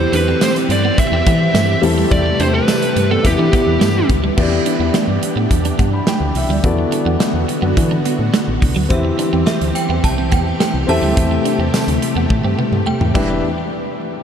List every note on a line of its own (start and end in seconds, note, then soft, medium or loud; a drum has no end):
0.00 0.66 E3 medium
0.00 1.81 E3 medium
0.00 1.79 C4 medium
0.00 1.81 C4 medium
0.00 1.82 E4 medium
0.00 1.80 G4 medium
0.00 4.34 G4 medium
0.00 0.12 C5 medium
0.13 0.34 E2 loud
0.13 0.22 D4 medium
0.13 0.41 B4 medium
0.13 closed hi-hat medium
0.28 0.36 C4 medium
0.41 0.50 A3 medium
0.41 0.51 C5 loud
0.41 snare loud
0.41 closed hi-hat medium
0.41 tambourine medium
0.56 closed hi-hat medium
0.69 0.91 G2 medium
0.69 0.99 D5 loud
0.69 muted clean electric guitar stroke soft
0.69 closed hi-hat medium
0.85 0.93 B3 medium
0.98 1.80 E5 loud
0.98 muted clean electric guitar stroke soft
0.98 kick medium
0.98 closed hi-hat medium
1.12 1.23 E2 loud
1.12 1.21 C4 medium
1.26 1.48 E3 loud
1.26 1.35 B3 medium
1.26 kick loud
1.26 closed hi-hat medium
1.54 1.76 G2 loud
1.54 1.63 A3 medium
1.54 snare loud
1.54 closed hi-hat medium
1.54 tambourine medium
1.82 2.04 E2 loud
1.82 3.23 C3 medium
1.82 2.64 E3 medium
1.82 3.21 G3 medium
1.82 3.21 A3 medium
1.82 3.24 A3 medium
1.82 3.22 C4 medium
1.82 3.22 E4 medium
1.82 3.22 A4 medium
1.82 muted clean electric guitar stroke soft
1.82 open hi-hat medium
1.98 2.06 G3 medium
2.11 2.33 E2 loud
2.11 2.41 D5 loud
2.11 kick loud
2.11 closed hi-hat medium
2.26 muted clean electric guitar stroke soft
2.40 2.61 E2 loud
2.40 2.49 D4 medium
2.40 2.54 C5 medium
2.40 closed hi-hat medium
2.54 2.63 C4 medium
2.54 3.11 B4 loud
2.68 2.77 A3 medium
2.68 snare loud
2.68 closed hi-hat medium
2.68 tambourine medium
2.82 closed hi-hat medium
2.96 3.17 G2 medium
2.96 muted clean electric guitar stroke soft
2.96 closed hi-hat medium
3.11 3.20 B3 medium
3.11 3.25 A4 medium
3.23 3.35 E2 loud
3.23 4.05 E3 medium
3.23 4.37 E3 medium
3.23 4.35 B3 medium
3.23 4.37 B3 medium
3.23 4.36 E4 medium
3.23 4.36 G4 medium
3.23 4.06 G4 medium
3.23 muted clean electric guitar stroke soft
3.23 kick medium
3.23 closed hi-hat medium
3.39 3.49 E3 medium
3.39 3.48 D4 medium
3.53 3.62 B3 medium
3.53 kick medium
3.53 closed hi-hat medium
3.67 3.78 E2 medium
3.81 4.02 G2 loud
3.81 3.90 A3 medium
3.81 snare loud
3.81 closed hi-hat medium
3.81 tambourine medium
4.09 4.31 D2 loud
4.09 muted clean electric guitar stroke soft
4.09 kick medium
4.09 closed hi-hat medium
4.24 4.32 G3 medium
4.37 4.59 E2 loud
4.37 5.19 E3 medium
4.37 6.63 E3 medium
4.37 6.60 B3 medium
4.37 6.62 D4 medium
4.37 6.60 E4 medium
4.37 6.61 G4 medium
4.37 6.62 G4 medium
4.37 5.77 D5 medium
4.37 kick loud
4.37 crash medium
4.52 muted clean electric guitar stroke soft
4.66 4.75 D4 medium
4.66 closed hi-hat medium
4.80 4.90 E2 loud
4.80 4.89 B3 medium
4.94 5.03 A3 medium
4.94 snare loud
4.94 closed hi-hat medium
5.08 5.19 G2 medium
5.23 muted clean electric guitar stroke soft
5.23 closed hi-hat medium
5.36 5.47 A2 medium
5.36 5.45 B3 medium
5.51 5.72 E2 medium
5.51 muted clean electric guitar stroke soft
5.51 kick medium
5.51 closed hi-hat medium
5.65 5.74 D4 medium
5.65 closed hi-hat medium
5.79 6.01 G2 medium
5.79 5.88 B3 medium
5.79 kick medium
5.79 closed hi-hat medium
5.93 6.07 B5 medium
6.07 6.16 A3 medium
6.07 6.35 G5 medium
6.07 snare loud
6.07 closed hi-hat medium
6.20 6.32 D2 medium
6.35 6.46 C2 medium
6.35 6.50 E5 medium
6.35 muted clean electric guitar stroke soft
6.35 open hi-hat medium
6.49 6.60 D2 medium
6.49 6.59 G3 medium
6.49 6.64 D5 medium
6.63 6.85 E2 loud
6.63 8.88 D3 medium
6.63 7.45 E3 medium
6.63 8.86 B3 medium
6.63 8.88 B3 medium
6.63 8.88 F#4 medium
6.63 8.87 F#4 medium
6.63 8.87 A4 medium
6.63 8.87 D5 medium
6.63 kick loud
6.63 closed hi-hat medium
6.79 muted clean electric guitar stroke soft
6.92 7.01 D4 medium
6.92 closed hi-hat medium
7.06 7.17 E2 loud
7.06 7.15 B3 medium
7.20 7.29 A3 medium
7.20 snare loud
7.20 closed hi-hat medium
7.34 7.45 E2 medium
7.49 muted clean electric guitar stroke soft
7.49 closed hi-hat medium
7.62 7.73 F#2 medium
7.62 7.71 B3 medium
7.77 7.98 E3 loud
7.77 muted clean electric guitar stroke soft
7.77 kick medium
7.77 closed hi-hat medium
7.91 8.00 D4 medium
8.05 8.14 B3 medium
8.05 closed hi-hat medium
8.19 8.30 A2 medium
8.34 8.42 A3 medium
8.34 snare loud
8.34 closed hi-hat medium
8.48 8.59 A1 loud
8.62 8.73 C2 medium
8.62 muted clean electric guitar stroke soft
8.62 kick medium
8.62 open hi-hat medium
8.76 8.87 D2 medium
8.76 8.85 F#3 medium
8.89 9.12 E2 loud
8.89 9.71 E3 medium
8.89 10.87 E3 medium
8.89 10.84 C4 medium
8.89 10.87 C4 medium
8.89 10.84 E4 medium
8.89 10.85 G4 medium
8.89 13.11 G4 medium
8.89 9.43 E5 medium
8.89 10.85 E5 medium
8.89 kick loud
8.89 closed hi-hat medium
9.05 muted clean electric guitar stroke soft
9.19 9.27 D4 medium
9.19 closed hi-hat medium
9.33 9.44 E2 medium
9.33 9.41 C4 medium
9.46 9.55 A3 medium
9.46 9.76 E5 medium
9.46 snare loud
9.46 closed hi-hat medium
9.61 9.72 D2 medium
9.61 closed hi-hat medium
9.75 10.05 G5 loud
9.75 muted clean electric guitar stroke soft
9.75 closed hi-hat medium
9.89 10.00 E2 loud
9.89 9.98 B3 medium
10.04 10.33 C2 medium
10.04 10.30 A5 loud
10.04 muted clean electric guitar stroke soft
10.04 kick medium
10.04 closed hi-hat medium
10.18 10.27 C4 medium
10.31 10.53 E2 medium
10.31 10.41 B3 medium
10.31 10.59 G5 medium
10.31 kick medium
10.31 closed hi-hat medium
10.60 10.69 A3 medium
10.60 10.90 G5 loud
10.60 snare loud
10.60 closed hi-hat medium
10.74 10.85 C2 medium
10.87 10.99 E2 loud
10.87 13.14 C3 medium
10.87 11.69 E3 medium
10.87 13.14 A3 medium
10.87 13.10 C4 medium
10.87 13.11 G4 medium
10.87 13.11 A4 medium
10.87 13.11 E5 medium
10.87 12.93 A5 loud
10.87 muted clean electric guitar stroke soft
10.87 open hi-hat medium
11.02 11.13 D2 medium
11.02 11.11 G3 medium
11.17 11.38 E2 loud
11.17 kick loud
11.17 closed hi-hat medium
11.31 muted clean electric guitar stroke soft
11.45 11.54 D4 medium
11.45 closed hi-hat medium
11.59 11.70 E2 loud
11.59 11.68 C4 medium
11.74 11.82 A3 medium
11.74 snare loud
11.74 closed hi-hat medium
11.74 tambourine medium
11.87 11.98 D2 medium
11.87 closed hi-hat medium
12.02 muted clean electric guitar stroke soft
12.02 closed hi-hat medium
12.16 12.26 E2 loud
12.16 12.25 B3 medium
12.30 12.41 A2 medium
12.30 muted clean electric guitar stroke soft
12.30 kick medium
12.30 high tom medium
12.44 12.55 G2 medium
12.44 12.53 C4 medium
12.59 12.67 B3 medium
12.59 mid tom medium
12.72 12.83 G2 loud
12.72 mid tom medium
12.86 12.92 E2 soft
12.86 12.95 A3 medium
12.86 13.13 G5 medium
13.01 13.11 E2 medium
13.01 mid tom medium
13.14 13.41 E1 medium
13.14 13.41 E2 medium
13.14 13.41 E3 medium
13.14 13.32 G3 medium
13.14 13.41 D4 medium
13.14 13.41 G4 medium
13.14 13.41 B4 medium
13.14 13.41 E5 medium
13.14 13.41 G5 medium
13.14 kick loud
13.14 crash medium